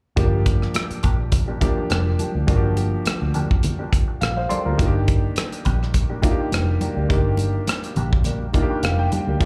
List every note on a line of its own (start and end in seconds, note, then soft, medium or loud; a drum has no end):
0.16 0.64 G1 medium
0.16 1.15 F3 medium
0.16 0.44 F3 medium
0.16 1.16 A#3 medium
0.16 0.44 A#3 medium
0.16 0.44 D4 medium
0.16 1.16 D4 medium
0.16 0.44 G4 medium
0.16 1.16 G4 medium
0.16 kick loud
0.16 closed hi-hat medium
0.16 muted conga soft
0.46 kick medium
0.46 closed hi-hat medium
0.46 muted conga medium
0.61 muted clean electric guitar stroke soft
0.61 cross-stick soft
0.74 muted clean electric guitar stroke soft
0.74 cross-stick loud
0.74 closed hi-hat loud
0.74 high conga medium
0.90 muted clean electric guitar stroke soft
0.90 muted fingered electric bass stroke soft
0.90 closed hi-hat medium
1.03 1.74 A#1 medium
1.03 1.23 F3 medium
1.03 1.19 A#3 medium
1.03 1.18 D4 medium
1.03 1.18 G4 medium
1.03 kick medium
1.03 closed hi-hat medium
1.03 low conga medium
1.19 muted clean electric guitar stroke soft
1.32 muted clean electric guitar stroke soft
1.32 kick medium
1.32 closed hi-hat medium
1.32 muted conga soft
1.48 1.60 F3 medium
1.48 1.60 A#3 medium
1.48 1.60 D4 medium
1.48 1.61 G4 medium
1.61 2.36 F3 medium
1.61 2.36 A#3 medium
1.61 2.36 D4 medium
1.61 2.37 G4 medium
1.61 muted clean electric guitar stroke soft
1.61 kick medium
1.61 closed hi-hat medium
1.61 muted conga soft
1.61 low conga medium
1.77 muted clean electric guitar stroke soft
1.90 2.14 F1 medium
1.90 2.10 F3 medium
1.90 2.06 A#3 medium
1.90 2.05 D4 medium
1.90 2.05 G4 medium
1.90 cross-stick medium
1.90 closed hi-hat medium
1.90 high conga medium
2.06 muted clean electric guitar stroke soft
2.19 2.35 F3 soft
2.19 2.34 A#3 soft
2.19 2.34 D4 medium
2.19 2.34 G4 soft
2.19 closed hi-hat medium
2.19 high conga medium
2.35 2.46 D2 medium
2.35 muted clean electric guitar stroke soft
2.47 2.95 G1 medium
2.47 3.46 F3 medium
2.47 2.75 F3 medium
2.47 3.47 A#3 medium
2.47 2.75 A#3 medium
2.47 2.75 D4 medium
2.47 3.47 D4 medium
2.47 2.56 F#4 medium
2.47 2.75 G4 medium
2.47 kick loud
2.47 closed hi-hat medium
2.47 muted conga soft
2.56 3.51 G4 medium
2.77 closed hi-hat medium
2.77 muted conga medium
2.93 muted clean electric guitar stroke soft
3.05 muted clean electric guitar stroke soft
3.05 muted fingered electric bass stroke soft
3.05 cross-stick loud
3.05 closed hi-hat medium
3.05 high conga medium
3.21 3.45 D2 medium
3.21 muted clean electric guitar stroke soft
3.34 3.54 F3 medium
3.34 3.50 A#3 medium
3.34 3.49 D4 medium
3.34 3.49 G4 medium
3.34 closed hi-hat medium
3.34 low conga medium
3.50 muted clean electric guitar stroke soft
3.50 kick medium
3.63 muted clean electric guitar stroke soft
3.63 closed hi-hat medium
3.63 muted conga soft
3.63 low conga medium
3.79 3.91 F3 medium
3.79 3.91 A#3 medium
3.79 3.92 D4 medium
3.79 3.92 G4 medium
3.92 muted clean electric guitar stroke soft
3.92 kick medium
3.92 closed hi-hat medium
3.92 muted conga soft
4.08 muted clean electric guitar stroke soft
4.21 4.45 A#1 medium
4.21 4.35 F5 medium
4.21 muted clean electric guitar stroke soft
4.21 cross-stick medium
4.21 closed hi-hat medium
4.21 high conga medium
4.36 4.50 C5 medium
4.36 4.49 F5 medium
4.36 muted clean electric guitar stroke soft
4.49 4.66 F3 soft
4.49 4.65 A#3 medium
4.49 4.65 D4 medium
4.49 4.64 G4 medium
4.49 4.65 A4 medium
4.49 4.65 D5 medium
4.49 4.77 C6 medium
4.49 closed hi-hat medium
4.49 high conga medium
4.65 4.77 D2 medium
4.65 4.78 F3 soft
4.65 4.78 A#3 soft
4.65 4.78 D4 soft
4.65 4.78 F4 soft
4.65 4.79 G4 soft
4.65 4.93 A#4 medium
4.78 5.26 G1 loud
4.78 5.77 D#3 medium
4.78 5.06 G3 medium
4.78 5.77 A#3 medium
4.78 5.06 A#3 medium
4.78 5.78 D4 medium
4.78 5.06 D4 medium
4.78 4.87 F4 medium
4.78 5.06 G4 medium
4.78 kick loud
4.78 closed hi-hat medium
4.78 muted conga soft
4.87 5.81 G4 medium
5.08 kick medium
5.08 closed hi-hat medium
5.08 muted conga medium
5.24 muted clean electric guitar stroke soft
5.36 muted clean electric guitar stroke soft
5.36 cross-stick loud
5.36 closed hi-hat medium
5.36 high conga medium
5.52 muted clean electric guitar stroke soft
5.52 closed hi-hat soft
5.65 6.36 A#1 medium
5.65 5.85 G3 medium
5.65 5.80 A#3 medium
5.65 5.80 D4 medium
5.65 5.80 G4 medium
5.65 kick medium
5.65 closed hi-hat medium
5.65 low conga medium
5.81 muted clean electric guitar stroke soft
5.81 cross-stick soft
5.94 muted clean electric guitar stroke soft
5.94 kick medium
5.94 closed hi-hat medium
5.94 muted conga soft
6.10 6.22 G3 medium
6.10 6.22 A#3 soft
6.10 6.22 D4 medium
6.10 6.23 G4 medium
6.22 6.97 D#3 medium
6.22 6.97 A#3 medium
6.22 6.98 D4 medium
6.22 6.31 F4 medium
6.22 muted clean electric guitar stroke soft
6.22 kick medium
6.22 closed hi-hat medium
6.22 muted conga soft
6.22 low conga medium
6.31 7.02 G4 medium
6.39 muted clean electric guitar stroke soft
6.52 6.76 F1 medium
6.52 muted clean electric guitar stroke soft
6.52 cross-stick loud
6.52 closed hi-hat medium
6.52 high conga medium
6.68 muted clean electric guitar stroke soft
6.81 6.97 G3 soft
6.81 6.96 A#3 medium
6.81 6.96 D4 medium
6.81 6.96 G4 medium
6.81 closed hi-hat medium
6.81 high conga medium
6.97 7.12 D2 medium
6.97 7.08 G3 soft
6.97 7.09 A#3 soft
6.97 7.09 D4 medium
6.97 7.10 G4 medium
7.09 7.57 G1 medium
7.09 8.08 D#3 medium
7.09 7.37 G3 medium
7.09 8.09 A#3 medium
7.09 7.37 A#3 medium
7.09 7.37 D4 medium
7.09 8.09 D4 medium
7.09 7.37 G4 medium
7.09 8.09 G4 medium
7.09 kick loud
7.09 closed hi-hat medium
7.09 muted conga soft
7.37 closed hi-hat medium
7.37 muted conga medium
7.54 muted clean electric guitar stroke soft
7.67 muted clean electric guitar stroke soft
7.67 cross-stick loud
7.67 closed hi-hat medium
7.67 high conga medium
7.84 muted clean electric guitar stroke soft
7.84 closed hi-hat soft
7.96 8.67 A#1 medium
7.96 8.16 G3 medium
7.96 8.12 A#3 medium
7.96 8.11 D4 medium
7.96 8.11 G4 medium
7.96 closed hi-hat medium
7.96 low conga medium
8.12 muted clean electric guitar stroke soft
8.12 kick medium
8.24 8.45 G3 medium
8.24 8.46 A#3 medium
8.24 8.46 D4 medium
8.24 8.46 G4 medium
8.24 closed hi-hat medium
8.24 muted conga soft
8.24 low conga medium
8.53 9.28 D#3 medium
8.53 9.29 A#3 medium
8.53 9.29 D4 medium
8.53 8.62 F4 medium
8.53 muted clean electric guitar stroke soft
8.53 kick medium
8.53 closed hi-hat medium
8.53 muted conga soft
8.62 9.33 G4 medium
8.70 8.82 G3 soft
8.70 8.82 A#3 soft
8.70 8.83 D4 medium
8.70 8.83 G4 medium
8.83 9.07 F1 medium
8.83 8.98 F5 medium
8.83 muted clean electric guitar stroke soft
8.83 cross-stick medium
8.83 closed hi-hat medium
8.83 high conga medium
8.99 9.38 G5 medium
8.99 muted clean electric guitar stroke soft
9.11 9.27 G3 soft
9.11 9.27 A#3 medium
9.11 9.27 D4 medium
9.11 9.26 G4 medium
9.11 closed hi-hat medium
9.11 high conga medium
9.27 9.38 D2 medium
9.27 9.39 G3 soft
9.27 9.39 A#3 soft
9.27 9.40 D4 soft
9.27 9.40 G4 medium
9.40 9.45 G1 medium
9.40 9.45 F3 medium
9.40 9.45 A#3 medium
9.40 9.45 D4 medium
9.40 9.45 G4 medium
9.40 kick loud
9.40 closed hi-hat medium
9.40 muted conga soft